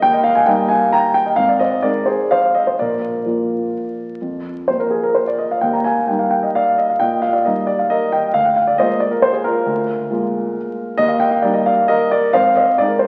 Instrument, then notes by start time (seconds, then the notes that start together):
grand piano
0.02 D#2 G5
0.13 D#5
0.24 F5
0.35 G#5
0.46 G3 A#3 D#4 D#5 G5
0.69 F5 G#5
0.93 G5 A#5
1.14 G5
1.26 D#5
1.36 G#1 F5
1.49 D5
1.59 C5 D#5
1.83 G#3 C4 D#4 A#4 D5
2.06 G#4 C5
2.31 C5 F5
2.55 D#5
2.67 C5
2.79 A#1 A#4 D5
3.26 F3 A#3 F4
4.21 F2
4.68 F3 A#3 F4 C5
4.80 A#4
4.91 G#4
5.03 A#4
5.15 C5
5.27 D5
5.38 D#5
5.51 F5
5.61 D#2 G5
5.73 A#5
5.84 F5 G#5
6.08 G3 A#3 D#4 G5
6.19 F5
6.31 G5
6.43 D#5
6.55 D5 F5
6.78 D#5
6.90 F5
7.00 A#2 D#5 G5
7.22 F5
7.33 D5
7.45 G3 A#3 D#4 A#4 D#5
7.67 D5
7.79 F5
7.90 A#4 D#5
8.12 D#5 G5
8.34 D2 F5
8.45 G5
8.56 F5
8.67 D5
8.78 G#3 A#3 F4 C5 D#5
9.00 D5
9.11 A#4
9.22 C5
9.33 G#4
9.44 F4 A#4
9.66 D2
10.10 G#3 A#3 F4
10.98 D#2 D#5
11.08 F5
11.20 G5
11.31 F5
11.42 G3 A#3 D#4 D5
11.54 D#5
11.66 D5 F5
11.88 A#4 D#5
12.11 A#4 D5
12.33 G#1 C5 F5
12.56 C5 D#5
12.78 G#3 C4 D#4 D5
12.88 A#4
12.99 C5